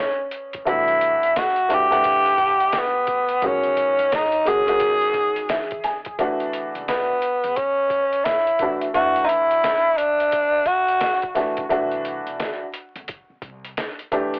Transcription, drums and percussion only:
0.31 closed hi-hat
0.53 kick, closed hi-hat
0.67 kick, closed hi-hat
0.88 closed hi-hat
1.01 closed hi-hat
1.23 closed hi-hat
1.36 snare, closed hi-hat
1.56 closed hi-hat
1.70 closed hi-hat
1.92 closed hi-hat
2.04 kick, closed hi-hat
2.26 closed hi-hat
2.38 kick, closed hi-hat
2.60 closed hi-hat
2.72 snare, closed hi-hat
3.07 kick, closed hi-hat
3.29 closed hi-hat
3.42 kick, closed hi-hat
3.63 closed hi-hat
3.77 closed hi-hat
3.99 closed hi-hat
4.12 snare, closed hi-hat
4.32 closed hi-hat
4.46 closed hi-hat
4.68 closed hi-hat
4.80 kick, closed hi-hat
5.01 closed hi-hat
5.14 kick, closed hi-hat
5.36 closed hi-hat
5.49 snare, closed hi-hat
5.71 kick, closed hi-hat
5.84 snare, closed hi-hat
6.05 kick, closed hi-hat
6.19 kick, closed hi-hat
6.40 closed hi-hat
6.53 closed hi-hat
6.75 closed hi-hat
6.88 snare, closed hi-hat
7.22 closed hi-hat
7.44 closed hi-hat
7.56 kick, closed hi-hat
7.90 kick, closed hi-hat
8.12 closed hi-hat
8.25 snare, closed hi-hat
8.47 closed hi-hat
8.59 kick, closed hi-hat
8.81 closed hi-hat
8.94 kick, closed hi-hat
9.16 closed hi-hat
9.29 closed hi-hat
9.51 closed hi-hat
9.64 snare, closed hi-hat
9.98 closed hi-hat
10.20 closed hi-hat
10.32 kick, closed hi-hat
10.66 kick, closed hi-hat
10.88 closed hi-hat
11.01 snare, closed hi-hat
11.22 kick, closed hi-hat
11.35 snare, closed hi-hat
11.57 kick, closed hi-hat
11.70 kick, closed hi-hat
11.91 closed hi-hat
12.05 closed hi-hat
12.27 closed hi-hat
12.40 snare, closed hi-hat
12.74 closed hi-hat
12.96 closed hi-hat
13.08 kick, closed hi-hat
13.42 kick, closed hi-hat
13.64 closed hi-hat
13.77 snare, closed hi-hat
13.99 closed hi-hat
14.12 kick, closed hi-hat
14.34 closed hi-hat

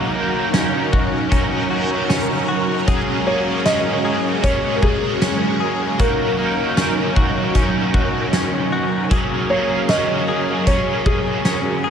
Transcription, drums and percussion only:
0.54 snare, closed hi-hat
0.93 kick
1.32 kick, closed hi-hat
2.10 snare, closed hi-hat
2.88 kick, closed hi-hat
3.65 snare, closed hi-hat
4.43 kick, closed hi-hat
4.83 kick
5.22 snare, closed hi-hat
5.99 kick, closed hi-hat
6.77 snare, closed hi-hat
7.16 kick
7.55 kick, closed hi-hat
7.94 kick
8.33 snare, closed hi-hat
9.11 kick, closed hi-hat
9.89 snare, closed hi-hat
10.67 kick, closed hi-hat
11.06 kick
11.45 snare, closed hi-hat

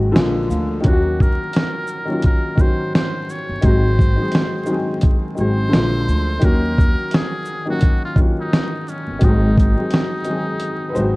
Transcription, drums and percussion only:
0.16 snare, closed hi-hat
0.51 shaker
0.84 kick, closed hi-hat
1.20 kick, shaker
1.53 snare, closed hi-hat
1.87 shaker
2.22 kick, closed hi-hat
2.58 kick, shaker
2.95 snare, closed hi-hat
3.29 shaker
3.62 kick, closed hi-hat
3.99 kick, shaker
4.32 snare, closed hi-hat
4.66 shaker
5.01 kick, closed hi-hat
5.37 shaker
5.73 snare, closed hi-hat
6.08 shaker
6.42 kick, closed hi-hat
6.78 kick, shaker
7.11 snare, closed hi-hat
7.45 shaker
7.81 kick, closed hi-hat
8.16 kick, shaker
8.53 snare, closed hi-hat
8.88 shaker
9.21 kick, closed hi-hat
9.58 kick, closed hi-hat, shaker
9.90 snare, closed hi-hat
10.24 closed hi-hat, shaker
10.60 closed hi-hat
10.96 shaker

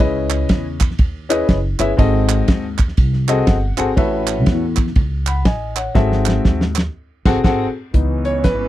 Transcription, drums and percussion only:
0.00 kick, ride
0.30 clap, ride
0.49 kick, snare, ride
0.80 kick, clap, ride
0.91 snare
0.99 kick, ride
1.30 clap, ride
1.49 kick, snare, ride
1.79 clap, ride
1.99 kick, ride
2.29 clap, ride
2.48 kick, snare, ride
2.78 kick, clap, ride
2.88 snare
2.97 kick, ride
3.13 snare
3.28 clap, ride
3.47 kick, snare, ride
3.78 clap, ride
3.97 kick, ride
4.27 clap, ride
4.46 kick, snare, ride
4.76 kick, clap, ride
4.87 snare
4.95 kick, ride
5.27 clap, ride
5.45 kick, snare, ride
5.76 clap, ride
5.95 kick, snare
6.12 snare
6.26 snare, clap
6.45 kick, snare
6.61 snare
6.76 snare, clap
7.25 kick, snare, crash
7.44 kick, snare, crash
7.94 kick, closed hi-hat
8.25 closed hi-hat
8.44 kick, snare, closed hi-hat

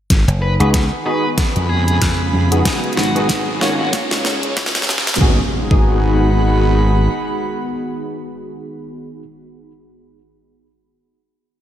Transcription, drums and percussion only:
0.10 kick, snare, closed hi-hat
0.28 closed hi-hat
0.60 closed hi-hat
0.74 kick, snare, closed hi-hat
1.38 kick, snare, closed hi-hat
1.56 closed hi-hat
1.88 closed hi-hat
2.02 kick, snare, closed hi-hat
2.52 closed hi-hat
2.65 kick, snare, closed hi-hat
2.84 closed hi-hat
2.93 closed hi-hat
2.97 snare
3.03 closed hi-hat
3.16 closed hi-hat
3.29 kick, snare, closed hi-hat
3.61 snare
3.93 kick, snare, closed hi-hat
4.11 snare, closed hi-hat
4.25 snare
4.43 closed hi-hat
4.57 kick, snare, closed hi-hat
4.66 snare
4.75 snare, closed hi-hat
4.82 snare
4.89 snare
4.98 snare
5.07 snare, closed hi-hat
5.14 snare
5.21 kick
5.71 kick

